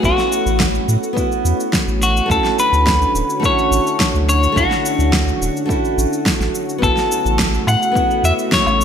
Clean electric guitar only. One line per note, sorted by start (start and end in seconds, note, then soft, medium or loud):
0.05 0.57 F#4 medium
2.03 2.31 F#4 medium
2.31 2.59 A4 medium
2.60 3.45 B4 loud
3.46 4.25 C#5 loud
4.29 4.58 C#5 loud
4.57 6.23 F#4 medium
6.83 7.64 A4 loud
7.68 8.25 F#5 loud
8.25 8.33 E5 loud
8.54 8.84 C#5 loud